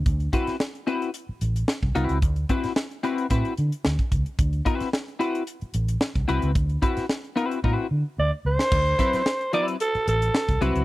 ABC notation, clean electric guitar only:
X:1
M:4/4
L:1/8
Q:1/4=111
K:Dmix
V:1 name="Clean electric guitar"
z [CEFB] z [CEFB] z3 [CEFB] | z [CEFB] z [CEFB] [CEFB] z3 | z [CEFB] z [CEFB] z3 [CEFB] | z [CEFB] z [CEFB] [CEFB] z3 |
z [F,CEB] z [F,CEB] z3 [F,CEB] |]